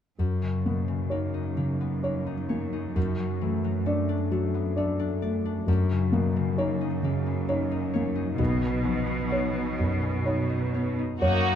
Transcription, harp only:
0.19 2.95 F#2 soft
0.42 0.87 C#3 soft
0.66 1.06 B2 soft
0.88 2.99 C#3 soft
1.11 1.56 A#3 soft
1.34 2.25 D#4 soft
1.57 2.03 A#3 soft
1.81 2.20 B3 soft
2.04 2.99 A#3 soft
2.26 2.72 D#4 soft
2.49 2.99 C#5 soft
2.73 3.00 D#4 soft
2.96 5.67 F#2 soft
3.19 3.63 F#3 soft
3.41 3.80 E3 soft
3.64 7.54 F#3 soft
3.86 4.30 A3 soft
4.09 4.98 D4 soft
4.31 4.76 A3 soft
4.54 4.93 B3 soft
4.77 5.71 A3 soft
4.99 5.44 D4 soft
5.22 5.71 D5 soft
5.45 5.71 D4 soft
5.68 8.43 F#2 soft
5.91 6.35 C#3 soft
6.13 6.51 B2 soft
6.36 8.43 C#3 soft
6.58 7.03 A#3 soft
6.81 7.70 D#4 soft
7.04 7.47 A#3 soft
7.26 7.65 B3 soft
7.49 8.43 A#3 soft
7.71 8.14 D#4 soft
7.94 10.73 C#5 soft
8.15 9.53 D#4 soft
8.38 11.26 B2 soft
8.61 9.06 F#3 soft
8.84 9.24 F3 soft
9.07 11.55 F#3 soft
9.30 9.76 B3 soft
9.54 10.48 D#4 soft
9.78 10.25 B3 soft
10.02 10.43 C#4 soft
10.26 11.26 B3 soft
10.50 10.97 D#4 soft
10.74 11.55 C#5 soft
10.99 11.55 D#4 soft
11.22 11.55 F#2 soft
11.46 11.55 A#3 soft

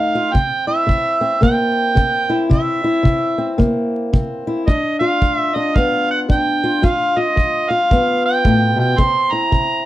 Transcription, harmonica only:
0.00 0.35 F5 medium
0.33 0.67 G5 medium
0.68 1.39 E5 loud
1.43 2.47 G5 medium
2.52 3.56 E5 medium
4.67 4.98 D#5 medium
4.99 5.36 F5 medium
5.36 5.56 E5 medium
5.55 5.78 D#5 medium
5.76 6.09 F5 medium
6.11 6.20 F#5 medium
6.31 6.87 G5 medium
6.85 7.20 F5 medium
7.19 7.72 D#5 medium
7.70 8.24 F5 medium
8.26 8.75 G5 medium
8.79 9.01 G5 medium
9.00 9.34 C6 loud
9.32 9.86 A#5 loud

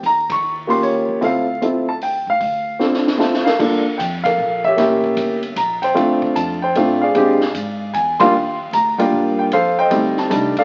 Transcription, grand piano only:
0.06 0.29 A#5 loud
0.32 0.68 C#6 medium
0.67 1.19 A#3 medium
0.67 1.19 C#4 medium
0.67 1.19 F4 medium
0.67 1.19 G4 medium
0.67 0.83 C6 medium
0.83 1.20 C#5 medium
1.21 1.45 C4 medium
1.21 1.45 E4 medium
1.21 1.46 F4 medium
1.21 1.46 A4 medium
1.21 1.60 F5 medium
1.62 1.85 C4 medium
1.62 1.86 E4 medium
1.62 1.86 F4 medium
1.62 1.86 A4 medium
1.89 1.94 A5 medium
2.03 2.29 G5 medium
2.30 3.17 F5 loud
2.79 3.16 C4 medium
2.79 3.18 D4 medium
2.79 3.18 F4 medium
2.79 3.18 A4 medium
3.18 3.42 C4 medium
3.18 3.43 E4 medium
3.18 3.43 F4 soft
3.18 3.43 A4 medium
3.18 3.44 A5 medium
3.45 3.58 A4 medium
3.45 3.96 A#4 medium
3.45 3.82 F5 medium
3.59 3.83 A#3 medium
3.59 3.83 D4 medium
3.59 3.83 F4 medium
3.59 3.83 A4 medium
3.98 4.04 G5 medium
4.24 4.75 A4 medium
4.24 4.75 A#4 medium
4.24 4.61 F5 medium
4.65 4.77 G4 medium
4.65 5.54 C#5 medium
4.65 5.53 E5 loud
4.77 5.38 A#3 medium
4.77 5.38 C#4 medium
4.77 5.39 E4 medium
4.77 5.39 G4 medium
5.57 5.81 A#5 medium
5.82 6.33 C5 medium
5.82 6.19 G5 medium
5.94 6.56 A3 medium
5.94 6.56 C4 medium
5.94 6.56 D4 medium
5.94 6.56 F4 medium
6.36 6.60 A5 medium
6.62 7.12 C5 medium
6.62 6.99 G5 medium
6.76 6.99 A3 medium
6.76 7.00 C4 medium
6.76 7.00 D4 medium
6.76 7.00 F4 medium
7.02 7.91 G#4 medium
7.02 7.91 D5 medium
7.02 7.97 F5 medium
7.15 7.39 G#3 medium
7.15 7.39 C4 medium
7.15 7.39 D4 medium
7.15 7.40 G4 medium
7.93 8.18 G#5 medium
8.19 8.32 G3 medium
8.19 8.32 A#3 medium
8.19 8.32 D4 medium
8.19 8.33 F4 medium
8.19 8.70 F5 medium
8.19 8.70 G5 medium
8.19 8.57 C6 loud
8.74 9.00 A#5 loud
8.98 9.49 G3 medium
8.98 9.49 A#3 medium
8.98 9.49 D4 medium
8.98 9.49 F4 medium
8.98 9.48 A#4 medium
8.98 9.48 D5 medium
8.98 9.36 G5 medium
9.39 9.44 G5 medium
9.53 10.15 A4 medium
9.53 9.78 C5 medium
9.53 9.77 F5 loud
9.79 10.28 C5 medium
9.79 10.28 D#5 medium
9.79 10.19 G5 loud
9.90 10.28 G3 medium
9.90 10.29 A3 medium
9.90 10.30 C4 medium
9.90 10.29 D#4 medium
10.19 10.29 A5 medium
10.30 10.54 G3 medium
10.30 10.54 A3 medium
10.30 10.54 D4 medium
10.30 10.54 D#4 medium
10.30 10.58 A5 medium
10.59 10.64 A4 medium
10.59 10.64 D5 medium
10.59 10.64 F5 medium

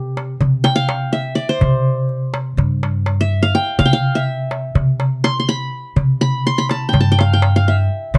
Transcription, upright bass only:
0.00 0.36 C3 medium
0.41 1.33 C3 medium
1.62 2.54 C3 medium
2.57 3.50 G2 medium
3.79 4.72 C3 medium
4.75 5.68 C3 medium
5.96 6.89 C3 medium
6.93 7.86 G2 loud
8.14 8.18 C3 medium

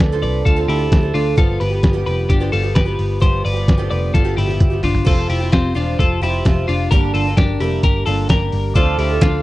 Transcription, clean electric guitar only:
0.00 0.20 B4 medium
0.00 0.20 D5 medium
0.22 0.45 B4 medium
0.22 0.46 D5 medium
0.45 0.69 F4 medium
0.45 0.68 A4 medium
0.68 1.12 E4 medium
0.68 1.12 G4 medium
1.14 1.38 D4 medium
1.14 1.37 F4 medium
1.38 1.61 F4 medium
1.38 1.61 A4 medium
1.60 2.04 G4 medium
1.60 2.04 B4 medium
2.06 2.28 G4 medium
2.06 2.30 B4 medium
2.29 2.53 D4 medium
2.29 2.52 G4 medium
2.52 2.76 F4 medium
2.52 2.76 A4 medium
2.75 3.20 G4 medium
2.75 3.19 B4 medium
3.22 3.45 G4 medium
3.22 3.44 C5 medium
3.45 3.89 B4 medium
3.45 3.89 D5 medium
3.90 4.14 B4 soft
3.90 4.14 D5 medium
4.14 4.38 F4 medium
4.14 4.37 A4 medium
4.37 4.81 E4 medium
4.37 4.81 G4 medium
4.84 5.07 D4 medium
4.84 5.06 F4 medium
5.07 5.29 F4 medium
5.07 5.30 A4 medium
5.30 5.53 E4 soft
5.30 5.52 G4 medium
5.52 5.76 C4 medium
5.52 5.74 F4 medium
5.75 5.99 D4 medium
5.75 5.99 F4 medium
5.99 6.22 F4 medium
5.99 6.22 A4 medium
6.23 6.66 E4 medium
6.23 6.66 G4 medium
6.68 6.92 D4 medium
6.68 6.91 F4 medium
6.91 7.14 G4 medium
6.91 7.13 A#4 medium
7.14 7.36 F4 medium
7.14 7.37 A4 medium
7.37 7.61 D4 medium
7.37 7.59 G4 medium
7.60 7.83 E4 soft
7.60 7.84 G4 medium
7.84 8.06 G4 medium
7.84 8.05 A#4 medium
8.06 8.30 F4 medium
8.06 8.29 A4 medium
8.30 8.73 G4 medium
8.30 8.73 A#4 medium
8.76 8.98 F4 medium
8.76 8.99 A4 medium
8.99 9.22 E4 medium
8.99 9.21 G4 medium
9.22 9.42 D4 medium
9.22 9.42 F4 medium

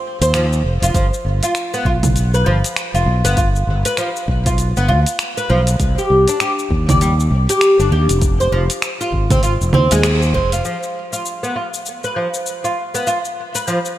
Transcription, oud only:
0.22 0.33 C5 medium
0.34 0.44 F3 medium
0.83 0.95 F4 medium
0.95 1.05 F3 medium
1.43 1.71 F4 medium
1.74 1.85 B3 medium
1.86 1.96 F4 medium
2.34 2.46 B4 medium
2.46 2.56 F3 medium
2.95 3.23 F4 medium
3.25 3.36 B3 medium
3.37 3.47 F4 medium
3.85 3.97 B4 medium
3.98 4.08 F3 medium
4.46 4.75 F4 medium
4.77 4.88 B3 medium
4.88 4.99 F4 medium
5.37 5.49 B4 medium
5.50 5.60 F3 medium
5.98 6.26 G4 medium
6.29 6.40 D4 medium
6.41 6.51 G4 medium
6.89 7.00 D5 medium
7.01 7.11 G3 medium
7.50 7.78 G4 medium
7.80 7.91 D4 medium
7.92 8.02 G4 medium
8.40 8.52 C5 medium
8.52 8.62 F3 medium
9.01 9.29 F4 medium
9.31 9.42 C4 medium
9.43 9.53 F4 medium
9.74 9.90 C4 medium
9.92 10.03 G#3 loud
10.04 10.20 G#4 medium
10.34 10.51 C4 medium
10.53 10.63 F4 medium
10.65 10.75 F3 medium
11.13 11.41 F4 medium
11.43 11.55 B3 medium
11.56 11.66 F4 medium
12.04 12.15 B4 medium
12.16 12.26 F3 medium
12.64 12.93 F4 medium
12.94 13.06 B3 medium
13.07 13.17 F4 medium
13.55 13.67 B4 medium
13.68 13.78 F3 medium

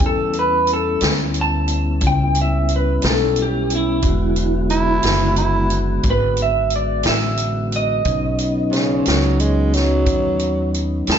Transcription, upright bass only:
0.00 0.99 E2 medium
1.02 2.00 D2 medium
2.01 3.00 C#2 medium
3.04 4.01 B1 medium
4.02 5.01 E1 medium
5.04 6.02 F#1 medium
6.04 7.02 G#1 medium
7.05 8.03 A1 medium
8.06 9.04 B1 medium
9.07 10.04 C#2 medium
10.06 11.04 D#2 medium
11.08 11.19 E2 medium

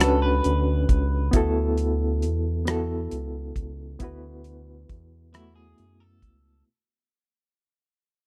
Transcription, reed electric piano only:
0.00 1.35 C#4 medium
0.00 1.35 D4 medium
0.00 0.02 F#4 medium
0.00 0.95 F#4 medium
0.00 1.35 A4 medium
0.00 0.96 B4 medium
1.31 2.26 B3 medium
1.31 2.27 E4 medium
1.31 2.28 F#4 medium
1.37 2.29 A4 medium
2.65 3.60 B3 medium
2.65 3.61 E4 medium
2.65 3.61 F#4 medium
2.70 3.62 A4 medium
3.99 4.93 B3 medium
3.99 4.94 E4 medium
3.99 4.95 F#4 medium
4.04 4.96 B4 medium
5.32 6.27 B3 medium
5.32 6.28 E4 medium
5.32 6.28 F#4 medium
5.37 6.29 A3 medium

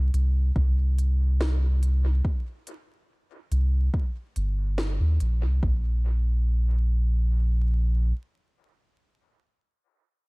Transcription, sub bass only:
0.13 0.51 C2 medium
0.56 2.21 C2 medium
3.51 3.89 C2 medium
4.36 5.00 G1 medium
5.01 5.18 D#2 loud
5.21 5.45 A#1 medium
5.43 5.61 C2 loud
5.63 8.12 A#1 loud

